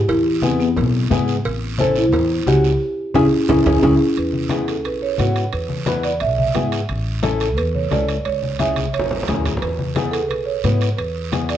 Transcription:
0.08 marimba E4, cowbell, high conga, low conga, long guiro
0.42 nylon-string guitar B3 E4 G#4, marimba C4, high conga, short guiro
0.60 marimba B3, short guiro
0.76 upright bass B1, cowbell, high conga, low conga, long guiro
1.10 upright bass G#2, nylon-string guitar B3 E4 G#4, high conga, low conga, low timbale, short guiro
1.28 short guiro
1.45 upright bass A1, cowbell, high conga, long guiro
1.78 nylon-string guitar C#4 E4 A4, marimba C5, high conga, short guiro
1.95 marimba E4, short guiro
2.12 upright bass E2, cowbell, high conga, low conga, long guiro
2.46 upright bass C#2, nylon-string guitar C#4 E4 F#4, marimba G4, high conga, short guiro
2.64 short guiro
3.14 upright bass C#2, nylon-string guitar C#4 E4 G#4, marimba C#4 E4 G#4, low conga, high timbale, long guiro
3.49 upright bass C#2, nylon-string guitar C#4 E4 G#4, marimba C#4 E4 G#4, low conga, high timbale, long guiro
3.66 upright bass C#2, marimba C#4 E4 G#4, nylon-string guitar C#4 E4 G#4, low conga, high timbale, long guiro
3.83 upright bass C#2, nylon-string guitar C#4 E4 G#4, marimba C#4 E4 G#4, low conga, high timbale, long guiro
4.17 upright bass E2, marimba B4, high conga, high timbale, long guiro
4.33 high conga
4.50 nylon-string guitar B3 E4 G#4, marimba G#4, high conga, high timbale, short guiro
4.68 marimba A4, high timbale, short guiro
4.84 upright bass B1, marimba B4, high conga, high timbale, long guiro
5.02 marimba C#5
5.18 upright bass G#2, nylon-string guitar B3 E4 F#4, high conga, high timbale, low timbale, short guiro
5.36 high timbale, short guiro
5.52 upright bass E2, marimba B4, high conga, high timbale, long guiro
5.69 high conga
5.86 nylon-string guitar B3 E4 B4, high conga, high timbale, short guiro
6.04 marimba D5, high timbale, short guiro
6.20 upright bass B1, marimba E5, high conga, high timbale, long guiro
6.38 marimba E5, high conga
6.55 upright bass G#2, nylon-string guitar B3 E4 G#4, high conga, high timbale, low timbale, short guiro
6.72 high timbale, short guiro
6.89 upright bass A1, high conga, high timbale, long guiro
7.23 nylon-string guitar C#4 E4 A4, high conga, high timbale, short guiro
7.40 marimba A4, high timbale, short guiro
7.57 upright bass E2, marimba B4, high conga, high timbale, long guiro
7.75 marimba C#5, high conga
7.91 upright bass C#2, nylon-string guitar C#4 E4 A4, marimba D5, high conga, high timbale, low timbale, short guiro
8.09 high timbale, short guiro
8.25 upright bass C#2, marimba C#5, high conga, high timbale, long guiro
8.43 high conga
8.59 nylon-string guitar C#4 E4 G#4, marimba E5, high conga, high timbale, short guiro
8.76 high conga, high timbale, short guiro
8.93 upright bass G#1, marimba C#5, high timbale, long guiro
8.99 low conga
9.11 low conga
9.23 low conga
9.28 upright bass D2, nylon-string guitar C#4 E4 G#4, high timbale, low timbale, short guiro
9.34 low conga
9.45 low conga, high timbale, short guiro
9.57 marimba B4, low conga
9.62 upright bass E2, high conga, high timbale, long guiro
9.79 high conga
9.95 nylon-string guitar B3 E4 G#4, marimba G#4, high conga, high timbale, short guiro
10.11 marimba A4, high timbale, short guiro
10.29 upright bass B1, marimba B4, high conga, high timbale, long guiro
10.46 marimba C#5
10.64 upright bass G#2, nylon-string guitar B3 E4 B4, high conga, high timbale, low timbale, short guiro
10.81 high timbale, short guiro
10.98 upright bass E2, marimba B4, high conga, high timbale, long guiro
11.32 nylon-string guitar B3 E4 G#4, high conga, high timbale, short guiro
11.49 marimba D5, high timbale, short guiro

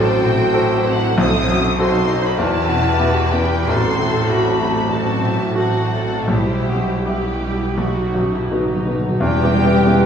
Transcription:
Already playing: double bass section A1, grand piano A1 A2 C4 F#4 A4, viola section F#3 C4, cello section A4, violin section A4 C5 G5
0.25 grand piano A2, cello section F#4
0.54 grand piano C4 F#4 A4, cello section E4
0.84 grand piano C4, violin section F#5
1.18 grand piano B1, double bass section B1, timpani B2, viola section F#3 C4, violin section A4 C5 D#6
1.48 grand piano F#2
1.79 viola section F#3 C4, grand piano C4 F#4 A4, cello section D#4, violin section A4 C5 C6
2.08 grand piano C4, viola section D#4
2.25 violin section B5
2.38 grand piano E2, double bass section E2, viola section E3 E4, cello section E4, violin section G4 B4 A5
2.69 grand piano B2
2.99 grand piano B3 E4 G4, cello section F#4
3.33 grand piano B3, cello section G4, violin section G5
3.68 grand piano A1, double bass section A1, viola section F#3 C4, violin section F#4 A4 C6, cello section A4
3.99 grand piano A2
4.30 grand piano A3 F#4, cello section F#4, violin section B5
4.59 grand piano A3, cello section G4
4.89 grand piano A1, viola section F#3 C4, violin section F#4 A4 A5, cello section F#4
5.21 grand piano A2, cello section E4
5.54 viola section F#3 C4, grand piano A3 F#4, violin section F#4 A4 F#5, cello section F#4
5.92 grand piano A3, cello section A4
6.27 grand piano B1, double bass section B1, viola section G3 E4, violin section E4 G4 C5, cello section G4
6.68 grand piano B2
7.04 viola section G3 E4, grand piano G3 E4 G4, violin section G4 B4
7.41 grand piano G3
7.78 grand piano B1, timpani B2, viola section F#3 D#4, violin section F#4
7.88 timpani B2
7.97 timpani B2
8.05 timpani B2
8.14 grand piano F#2, timpani B2
8.22 timpani B2
8.31 timpani B2, violin section E4
8.39 timpani B2
8.48 timpani B2, grand piano B3 D#4, violin section D#4
8.52 grand piano F#4
8.57 timpani B2
8.65 timpani B2
8.74 timpani B2
8.82 timpani B2
8.86 grand piano B3
8.91 timpani B2
8.99 timpani B2
9.07 timpani B2
9.20 double bass section E1, grand piano E2, cello section E2, trombone section E3 B3, french horn section G3, viola section B3 E4, violin section G4 G5, trumpet B4, flute section G5, tam-tam
9.43 grand piano B3 E4 G4
9.53 viola section G4
9.64 grand piano B3 E4 G4
9.85 viola section B3 G4, grand piano B3 E4 G4

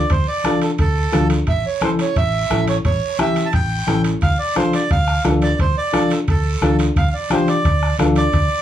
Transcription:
Already playing: accordion D5
0.10 fingered electric bass D2, accordion C5, bombo low, high conga, high timbale, long guiro
0.28 accordion D5
0.44 upright piano D4 F4 A4, bombo rim, high conga, high timbale, short guiro
0.61 accordion A4, high timbale, short guiro
0.78 fingered electric bass D2, accordion A4, bombo low, high conga, high timbale, long guiro
1.12 fingered electric bass D2, upright piano D4 F4 A4, bombo rim, high conga, high timbale, short guiro
1.30 high timbale, short guiro
1.47 fingered electric bass A1, accordion E5, bombo low, high conga, high timbale, long guiro
1.66 accordion C#5
1.81 upright piano C#4 E4 A4, accordion C5, bombo rim, high conga, high timbale, short guiro
1.99 accordion C#5, high timbale, short guiro
2.16 fingered electric bass A1, accordion E5, bombo low, high conga, high timbale, long guiro
2.50 fingered electric bass A1, upright piano C#4 E4 A4, bombo rim, high conga, high timbale, short guiro
2.67 accordion C#5, high timbale, short guiro
2.85 fingered electric bass A1, accordion C#5, bombo low, high conga, high timbale, long guiro
3.19 upright piano C#4 E4 G4, accordion E5, bombo rim, high conga, high timbale, short guiro
3.36 high timbale, short guiro
3.46 accordion A5
3.53 fingered electric bass A1, accordion G5, bombo low, high conga, high timbale, long guiro
3.87 fingered electric bass A1, upright piano C#4 E4 A4, bombo rim, high conga, high timbale, short guiro
4.04 high timbale, short guiro
4.21 fingered electric bass D2, accordion F5, bombo low, high conga, high timbale, long guiro
4.39 accordion D5
4.55 upright piano D4 F4 A4, accordion C5, bombo rim, high conga, high timbale, short guiro
4.73 accordion D5, high timbale, short guiro
4.91 fingered electric bass D2, accordion F5, bombo low, high conga, high timbale, long guiro
5.08 bombo rim
5.24 fingered electric bass D2, upright piano D4 F4 A4, bombo rim, high conga, high timbale, low timbale, short guiro
5.42 accordion D5, high timbale, short guiro
5.59 fingered electric bass D2, accordion C5, bombo low, high conga, high timbale, long guiro
5.78 accordion D5
5.92 upright piano D4 F4 A4, bombo rim, high conga, high timbale, short guiro
6.10 accordion A4, high timbale, short guiro
6.27 fingered electric bass D2, accordion A4, bombo low, high conga, high timbale, long guiro
6.62 fingered electric bass D2, upright piano D4 F4 A4, bombo rim, high conga, high timbale, short guiro
6.79 high timbale, short guiro
6.96 fingered electric bass D2, accordion F5, bombo low, high conga, high timbale, long guiro
7.10 accordion D5 F5
7.30 upright piano D4 F4 G4, accordion C5, bombo rim, high conga, high timbale, short guiro
7.48 accordion D5, high timbale, short guiro
7.65 fingered electric bass D2, bombo low, high timbale, long guiro
7.83 bombo rim
7.98 fingered electric bass D2, upright piano D4 F4 A4, bombo rim, high conga, high timbale, low timbale, short guiro
8.16 accordion D5, high timbale, short guiro
8.33 fingered electric bass D2, bombo low, high conga, high timbale, long guiro

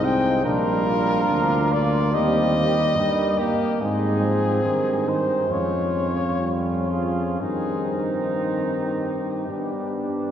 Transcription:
Already playing: tuba C2, trombone G#3, flugelhorn D#4
0.02 trombone section C4, cornet G5
0.43 tuba A#1, trombone G3, trombone section D4, flugelhorn F4, cornet A#4
0.86 trombone section D4
1.28 tuba D2, trombone F3
1.72 trombone A#3, cornet D5
2.12 tuba D#2, trombone G3, trombone section C4, flugelhorn G4, cornet D#5
2.55 flugelhorn G4
2.95 tuba G2, trombone G3, trombone section A#3, flugelhorn D#4
3.38 trombone A#3, cornet G4
3.80 tuba G#2, trombone G#3, trombone section C4, flugelhorn D#4, cornet G#4
4.24 trombone F3
4.63 tuba G2, trombone D#3, flugelhorn D#4
5.07 trombone D#3, cornet C5
5.50 tuba F2, trombone G#3, trombone section C#4, flugelhorn F4, cornet C#5
6.39 trombone G3, trombone section C#4, flugelhorn F4
6.88 trombone F3, cornet G#4
7.40 tuba G2, trombone D#3, trombone section C4, flugelhorn D#4, cornet G#4
8.47 cornet G4
9.50 tuba G2, trombone G3, trombone section B3, flugelhorn D4

